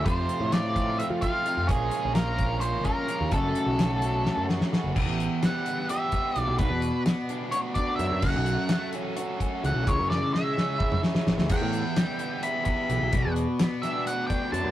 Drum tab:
CC |--------------|--------------|--------------|x-------------|
HH |x-x-x-x-x-x-x-|x-x-x-x-x-x-x-|x-x-x-x-------|--x-x-x-x-x-x-|
SD |----o---------|----o---------|----o---o-ooo-|----o---------|
T2 |--------------|--------------|--------------|--------------|
BD |o-----o---o---|o-----o---o---|o-------------|o---------o---|

CC |--------------|x-------------|--------------|x-------------|
HH |x-x-x-x-x-x-x-|--x-x-x-x-x-x-|x-------------|x-x-x-x-x-x-x-|
SD |----o---------|----o---------|--o-o-o---oooo|----o---------|
T2 |--------------|--------------|---------o----|--------------|
BD |o---------o---|o---------o---|o-------o-----|o---------o---|

CC |--------------|
HH |x-x-x-x-x-x-x-|
SD |----o-o-------|
T2 |--------------|
BD |o---------o---|